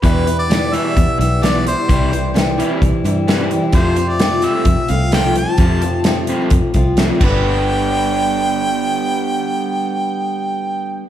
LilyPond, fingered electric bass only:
\new Staff \with { instrumentName = "Fingered electric bass" } { \clef bass \time 4/4 \key g \mixolydian \tempo 4 = 130 e,2 e,16 r16 b,,4. | c,2 c,16 r16 g,4. | f,2 f,16 r16 c,4. | f,2 f,16 r16 c,4 g,,8~ |
g,,1~ | g,,1 | }